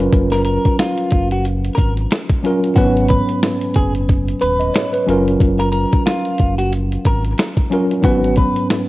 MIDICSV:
0, 0, Header, 1, 5, 480
1, 0, Start_track
1, 0, Tempo, 659341
1, 95, Time_signature, 4, 2, 24, 8
1, 6469, End_track
2, 0, Start_track
2, 0, Title_t, "Clean electric guitar"
2, 0, Program_c, 0, 27
2, 233, Note_on_c, 0, 70, 85
2, 320, Note_off_c, 0, 70, 0
2, 329, Note_on_c, 0, 70, 85
2, 547, Note_off_c, 0, 70, 0
2, 579, Note_on_c, 0, 65, 90
2, 931, Note_off_c, 0, 65, 0
2, 961, Note_on_c, 0, 66, 70
2, 1050, Note_off_c, 0, 66, 0
2, 1273, Note_on_c, 0, 70, 82
2, 1406, Note_off_c, 0, 70, 0
2, 2008, Note_on_c, 0, 66, 95
2, 2227, Note_off_c, 0, 66, 0
2, 2249, Note_on_c, 0, 71, 84
2, 2468, Note_off_c, 0, 71, 0
2, 2736, Note_on_c, 0, 68, 83
2, 2859, Note_off_c, 0, 68, 0
2, 3214, Note_on_c, 0, 71, 79
2, 3568, Note_off_c, 0, 71, 0
2, 4073, Note_on_c, 0, 70, 79
2, 4154, Note_off_c, 0, 70, 0
2, 4162, Note_on_c, 0, 70, 89
2, 4384, Note_off_c, 0, 70, 0
2, 4410, Note_on_c, 0, 65, 87
2, 4766, Note_off_c, 0, 65, 0
2, 4791, Note_on_c, 0, 66, 71
2, 4884, Note_off_c, 0, 66, 0
2, 5144, Note_on_c, 0, 70, 81
2, 5263, Note_off_c, 0, 70, 0
2, 5856, Note_on_c, 0, 66, 108
2, 6072, Note_off_c, 0, 66, 0
2, 6096, Note_on_c, 0, 71, 85
2, 6311, Note_off_c, 0, 71, 0
2, 6469, End_track
3, 0, Start_track
3, 0, Title_t, "Tine electric piano"
3, 0, Program_c, 1, 4
3, 0, Control_c, 1, 64, 127
3, 0, Note_on_c, 1, 54, 98
3, 0, Note_on_c, 1, 61, 88
3, 0, Note_on_c, 1, 65, 84
3, 0, Note_on_c, 1, 70, 106
3, 626, Note_off_c, 1, 54, 0
3, 630, Note_off_c, 1, 61, 0
3, 634, Note_off_c, 1, 65, 0
3, 638, Note_off_c, 1, 70, 0
3, 1768, Note_on_c, 1, 54, 85
3, 1777, Note_on_c, 1, 61, 80
3, 1786, Note_on_c, 1, 65, 77
3, 1794, Note_on_c, 1, 70, 102
3, 1965, Note_off_c, 1, 54, 0
3, 1969, Note_off_c, 1, 61, 0
3, 1973, Note_off_c, 1, 65, 0
3, 1978, Note_off_c, 1, 70, 0
3, 1996, Note_on_c, 1, 44, 84
3, 2003, Note_on_c, 1, 54, 83
3, 2009, Note_on_c, 1, 59, 82
3, 2016, Note_on_c, 1, 61, 80
3, 2023, Note_on_c, 1, 71, 99
3, 2024, Control_c, 1, 64, 0
3, 2139, Control_c, 1, 64, 127
3, 2752, Note_off_c, 1, 44, 0
3, 2755, Note_off_c, 1, 54, 0
3, 2758, Note_off_c, 1, 59, 0
3, 2761, Note_off_c, 1, 61, 0
3, 2765, Note_off_c, 1, 71, 0
3, 3210, Note_on_c, 1, 71, 71
3, 3342, Note_off_c, 1, 71, 0
3, 3346, Note_on_c, 1, 75, 73
3, 3447, Note_off_c, 1, 75, 0
3, 3451, Note_on_c, 1, 73, 74
3, 3582, Note_off_c, 1, 73, 0
3, 3590, Note_on_c, 1, 71, 68
3, 3687, Note_on_c, 1, 54, 98
3, 3696, Note_on_c, 1, 61, 87
3, 3704, Note_on_c, 1, 65, 87
3, 3705, Control_c, 1, 64, 0
3, 3713, Note_on_c, 1, 70, 107
3, 3819, Note_off_c, 1, 71, 0
3, 3844, Control_c, 1, 64, 127
3, 4465, Note_off_c, 1, 54, 0
3, 4470, Note_off_c, 1, 61, 0
3, 4474, Note_off_c, 1, 65, 0
3, 4479, Note_off_c, 1, 70, 0
3, 5606, Note_on_c, 1, 54, 89
3, 5614, Note_on_c, 1, 61, 83
3, 5624, Note_on_c, 1, 65, 79
3, 5632, Note_on_c, 1, 70, 102
3, 5804, Note_off_c, 1, 54, 0
3, 5808, Note_off_c, 1, 61, 0
3, 5812, Note_off_c, 1, 65, 0
3, 5817, Note_off_c, 1, 70, 0
3, 5835, Note_on_c, 1, 44, 85
3, 5841, Note_on_c, 1, 54, 83
3, 5848, Note_on_c, 1, 59, 81
3, 5854, Note_on_c, 1, 61, 81
3, 5861, Note_on_c, 1, 71, 101
3, 5864, Control_c, 1, 64, 0
3, 6005, Control_c, 1, 64, 127
3, 6469, Note_off_c, 1, 44, 0
3, 6469, Note_off_c, 1, 54, 0
3, 6469, Note_off_c, 1, 59, 0
3, 6469, Note_off_c, 1, 61, 0
3, 6469, Note_off_c, 1, 71, 0
3, 6469, End_track
4, 0, Start_track
4, 0, Title_t, "Sub bass"
4, 0, Program_c, 2, 38
4, 94, Note_on_c, 2, 30, 102
4, 422, Note_off_c, 2, 30, 0
4, 817, Note_on_c, 2, 30, 95
4, 1233, Note_off_c, 2, 30, 0
4, 1295, Note_on_c, 2, 32, 88
4, 1504, Note_off_c, 2, 32, 0
4, 2014, Note_on_c, 2, 32, 102
4, 2342, Note_off_c, 2, 32, 0
4, 2737, Note_on_c, 2, 30, 89
4, 3153, Note_off_c, 2, 30, 0
4, 3217, Note_on_c, 2, 27, 98
4, 3425, Note_off_c, 2, 27, 0
4, 3696, Note_on_c, 2, 30, 106
4, 3904, Note_off_c, 2, 30, 0
4, 3933, Note_on_c, 2, 30, 107
4, 4261, Note_off_c, 2, 30, 0
4, 4657, Note_on_c, 2, 30, 96
4, 5073, Note_off_c, 2, 30, 0
4, 5135, Note_on_c, 2, 32, 88
4, 5344, Note_off_c, 2, 32, 0
4, 5853, Note_on_c, 2, 32, 106
4, 6181, Note_off_c, 2, 32, 0
4, 6469, End_track
5, 0, Start_track
5, 0, Title_t, "Drums"
5, 2, Note_on_c, 9, 42, 58
5, 75, Note_off_c, 9, 42, 0
5, 92, Note_on_c, 9, 36, 122
5, 99, Note_on_c, 9, 42, 93
5, 165, Note_off_c, 9, 36, 0
5, 172, Note_off_c, 9, 42, 0
5, 237, Note_on_c, 9, 38, 36
5, 241, Note_on_c, 9, 42, 53
5, 309, Note_off_c, 9, 38, 0
5, 314, Note_off_c, 9, 42, 0
5, 326, Note_on_c, 9, 42, 80
5, 399, Note_off_c, 9, 42, 0
5, 474, Note_on_c, 9, 42, 54
5, 476, Note_on_c, 9, 36, 95
5, 547, Note_off_c, 9, 42, 0
5, 549, Note_off_c, 9, 36, 0
5, 576, Note_on_c, 9, 38, 115
5, 577, Note_on_c, 9, 40, 88
5, 581, Note_on_c, 9, 42, 80
5, 649, Note_off_c, 9, 38, 0
5, 650, Note_off_c, 9, 40, 0
5, 654, Note_off_c, 9, 42, 0
5, 711, Note_on_c, 9, 42, 57
5, 784, Note_off_c, 9, 42, 0
5, 806, Note_on_c, 9, 42, 74
5, 816, Note_on_c, 9, 36, 92
5, 878, Note_off_c, 9, 42, 0
5, 889, Note_off_c, 9, 36, 0
5, 956, Note_on_c, 9, 42, 59
5, 1028, Note_off_c, 9, 42, 0
5, 1056, Note_on_c, 9, 42, 85
5, 1129, Note_off_c, 9, 42, 0
5, 1199, Note_on_c, 9, 42, 60
5, 1272, Note_off_c, 9, 42, 0
5, 1295, Note_on_c, 9, 36, 86
5, 1299, Note_on_c, 9, 42, 70
5, 1367, Note_off_c, 9, 36, 0
5, 1372, Note_off_c, 9, 42, 0
5, 1435, Note_on_c, 9, 42, 51
5, 1508, Note_off_c, 9, 42, 0
5, 1534, Note_on_c, 9, 42, 92
5, 1543, Note_on_c, 9, 38, 114
5, 1543, Note_on_c, 9, 40, 90
5, 1607, Note_off_c, 9, 42, 0
5, 1616, Note_off_c, 9, 38, 0
5, 1616, Note_off_c, 9, 40, 0
5, 1672, Note_on_c, 9, 36, 96
5, 1674, Note_on_c, 9, 42, 57
5, 1744, Note_off_c, 9, 36, 0
5, 1747, Note_off_c, 9, 42, 0
5, 1783, Note_on_c, 9, 42, 74
5, 1856, Note_off_c, 9, 42, 0
5, 1922, Note_on_c, 9, 42, 59
5, 1995, Note_off_c, 9, 42, 0
5, 2013, Note_on_c, 9, 36, 121
5, 2019, Note_on_c, 9, 42, 92
5, 2086, Note_off_c, 9, 36, 0
5, 2092, Note_off_c, 9, 42, 0
5, 2162, Note_on_c, 9, 42, 52
5, 2235, Note_off_c, 9, 42, 0
5, 2246, Note_on_c, 9, 42, 77
5, 2258, Note_on_c, 9, 36, 97
5, 2319, Note_off_c, 9, 42, 0
5, 2331, Note_off_c, 9, 36, 0
5, 2394, Note_on_c, 9, 42, 51
5, 2467, Note_off_c, 9, 42, 0
5, 2496, Note_on_c, 9, 38, 112
5, 2497, Note_on_c, 9, 40, 92
5, 2501, Note_on_c, 9, 42, 80
5, 2569, Note_off_c, 9, 38, 0
5, 2570, Note_off_c, 9, 40, 0
5, 2574, Note_off_c, 9, 42, 0
5, 2631, Note_on_c, 9, 42, 55
5, 2704, Note_off_c, 9, 42, 0
5, 2725, Note_on_c, 9, 42, 78
5, 2736, Note_on_c, 9, 36, 96
5, 2798, Note_off_c, 9, 42, 0
5, 2809, Note_off_c, 9, 36, 0
5, 2875, Note_on_c, 9, 42, 60
5, 2947, Note_off_c, 9, 42, 0
5, 2977, Note_on_c, 9, 42, 87
5, 2979, Note_on_c, 9, 36, 92
5, 3050, Note_off_c, 9, 42, 0
5, 3052, Note_off_c, 9, 36, 0
5, 3119, Note_on_c, 9, 42, 60
5, 3192, Note_off_c, 9, 42, 0
5, 3218, Note_on_c, 9, 42, 69
5, 3291, Note_off_c, 9, 42, 0
5, 3354, Note_on_c, 9, 42, 49
5, 3427, Note_off_c, 9, 42, 0
5, 3453, Note_on_c, 9, 42, 92
5, 3462, Note_on_c, 9, 38, 116
5, 3463, Note_on_c, 9, 40, 93
5, 3526, Note_off_c, 9, 42, 0
5, 3535, Note_off_c, 9, 38, 0
5, 3535, Note_off_c, 9, 40, 0
5, 3595, Note_on_c, 9, 42, 59
5, 3668, Note_off_c, 9, 42, 0
5, 3702, Note_on_c, 9, 42, 75
5, 3775, Note_off_c, 9, 42, 0
5, 3842, Note_on_c, 9, 42, 58
5, 3915, Note_off_c, 9, 42, 0
5, 3932, Note_on_c, 9, 36, 117
5, 3939, Note_on_c, 9, 42, 91
5, 4005, Note_off_c, 9, 36, 0
5, 4012, Note_off_c, 9, 42, 0
5, 4082, Note_on_c, 9, 42, 52
5, 4155, Note_off_c, 9, 42, 0
5, 4167, Note_on_c, 9, 42, 80
5, 4239, Note_off_c, 9, 42, 0
5, 4313, Note_on_c, 9, 42, 54
5, 4316, Note_on_c, 9, 36, 97
5, 4386, Note_off_c, 9, 42, 0
5, 4389, Note_off_c, 9, 36, 0
5, 4416, Note_on_c, 9, 38, 115
5, 4417, Note_on_c, 9, 40, 90
5, 4421, Note_on_c, 9, 42, 83
5, 4489, Note_off_c, 9, 38, 0
5, 4489, Note_off_c, 9, 40, 0
5, 4493, Note_off_c, 9, 42, 0
5, 4550, Note_on_c, 9, 42, 55
5, 4623, Note_off_c, 9, 42, 0
5, 4646, Note_on_c, 9, 42, 77
5, 4656, Note_on_c, 9, 36, 93
5, 4719, Note_off_c, 9, 42, 0
5, 4729, Note_off_c, 9, 36, 0
5, 4795, Note_on_c, 9, 42, 60
5, 4868, Note_off_c, 9, 42, 0
5, 4897, Note_on_c, 9, 42, 88
5, 4969, Note_off_c, 9, 42, 0
5, 5039, Note_on_c, 9, 42, 60
5, 5111, Note_off_c, 9, 42, 0
5, 5134, Note_on_c, 9, 36, 88
5, 5139, Note_on_c, 9, 42, 68
5, 5207, Note_off_c, 9, 36, 0
5, 5212, Note_off_c, 9, 42, 0
5, 5276, Note_on_c, 9, 42, 48
5, 5348, Note_off_c, 9, 42, 0
5, 5373, Note_on_c, 9, 42, 92
5, 5381, Note_on_c, 9, 38, 116
5, 5382, Note_on_c, 9, 40, 96
5, 5445, Note_off_c, 9, 42, 0
5, 5454, Note_off_c, 9, 38, 0
5, 5455, Note_off_c, 9, 40, 0
5, 5511, Note_on_c, 9, 36, 96
5, 5515, Note_on_c, 9, 42, 58
5, 5584, Note_off_c, 9, 36, 0
5, 5588, Note_off_c, 9, 42, 0
5, 5622, Note_on_c, 9, 42, 75
5, 5695, Note_off_c, 9, 42, 0
5, 5761, Note_on_c, 9, 42, 59
5, 5834, Note_off_c, 9, 42, 0
5, 5852, Note_on_c, 9, 36, 122
5, 5857, Note_on_c, 9, 42, 88
5, 5925, Note_off_c, 9, 36, 0
5, 5930, Note_off_c, 9, 42, 0
5, 6001, Note_on_c, 9, 42, 54
5, 6074, Note_off_c, 9, 42, 0
5, 6086, Note_on_c, 9, 42, 81
5, 6098, Note_on_c, 9, 36, 97
5, 6159, Note_off_c, 9, 42, 0
5, 6171, Note_off_c, 9, 36, 0
5, 6234, Note_on_c, 9, 42, 53
5, 6307, Note_off_c, 9, 42, 0
5, 6336, Note_on_c, 9, 38, 108
5, 6337, Note_on_c, 9, 40, 89
5, 6341, Note_on_c, 9, 42, 82
5, 6409, Note_off_c, 9, 38, 0
5, 6410, Note_off_c, 9, 40, 0
5, 6414, Note_off_c, 9, 42, 0
5, 6469, End_track
0, 0, End_of_file